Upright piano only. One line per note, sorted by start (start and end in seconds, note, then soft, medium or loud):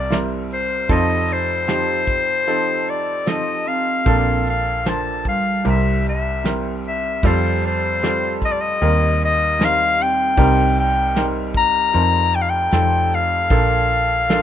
0.00 0.85 C2 medium
0.00 0.85 C3 medium
0.00 0.10 G3 medium
0.00 0.10 C4 medium
0.00 0.10 E4 medium
0.00 0.11 A#4 medium
0.10 0.72 G3 medium
0.10 0.72 C4 medium
0.10 0.72 E4 medium
0.10 0.72 A#4 medium
0.89 4.02 F1 medium
0.89 4.03 F2 medium
0.89 1.51 F3 medium
0.89 1.51 C4 medium
0.89 1.51 D#4 medium
0.89 1.51 A4 medium
1.68 2.30 F3 medium
1.68 2.30 C4 medium
1.68 2.30 D#4 medium
1.68 2.30 G4 medium
2.47 3.09 F3 medium
2.47 3.09 C4 medium
2.47 3.09 D#4 medium
2.47 3.09 A4 medium
3.26 3.88 F3 medium
3.26 3.89 C4 medium
3.26 3.89 D#4 medium
3.26 3.89 A4 medium
4.06 5.61 A#1 medium
4.06 5.61 A#2 medium
4.06 4.68 F3 medium
4.06 4.68 A#3 medium
4.06 4.68 D4 medium
4.06 4.68 A4 medium
4.86 5.48 F3 medium
4.86 5.48 A#3 medium
4.86 5.48 D4 medium
4.86 5.48 C5 medium
5.65 7.19 C2 medium
5.65 7.19 C3 medium
5.65 6.27 G3 medium
5.65 6.27 C4 medium
5.65 6.27 E4 medium
5.65 6.27 A#4 medium
6.44 7.06 G3 medium
6.44 7.06 C4 medium
6.44 7.06 E4 medium
6.44 7.06 A#4 medium
7.24 8.77 F1 medium
7.24 8.77 F2 medium
7.24 7.85 G3 medium
7.24 7.85 C4 medium
7.24 7.85 F4 medium
7.24 7.85 A4 medium
8.03 8.64 G3 medium
8.03 8.64 C4 medium
8.03 8.64 F4 medium
8.03 8.64 A4 medium
8.81 10.34 D#2 medium
8.81 10.34 D#3 medium
8.81 9.42 G3 medium
8.81 9.42 C4 medium
8.81 9.42 D#4 medium
8.81 9.42 A#4 medium
9.59 10.20 G3 medium
9.59 10.20 C4 medium
9.59 10.20 D#4 medium
9.59 10.20 A#4 medium
10.37 11.90 C2 medium
10.37 11.90 C3 medium
10.37 10.98 G3 medium
10.37 10.98 C4 medium
10.37 10.98 D#4 medium
10.37 10.98 A#4 medium
11.16 11.77 G3 medium
11.16 11.77 C4 medium
11.16 11.77 D#4 medium
11.16 11.77 A#4 medium
11.94 12.68 F1 medium
11.94 12.69 F2 medium
11.94 12.55 F3 medium
11.94 12.55 C4 medium
11.94 12.55 D#4 medium
11.94 12.55 A#4 medium
12.72 13.47 F1 medium
12.72 13.47 F2 medium
12.72 13.34 F3 medium
12.72 13.34 C4 medium
12.72 13.34 D#4 medium
12.72 13.34 A4 medium
13.51 14.42 A#1 medium
13.51 14.42 A#2 medium
13.51 14.12 F3 medium
13.51 14.12 A#3 medium
13.51 14.12 D4 medium
13.51 14.12 A4 medium
14.29 14.42 F3 medium
14.29 14.42 A#3 medium
14.29 14.42 D4 medium
14.29 14.42 A4 medium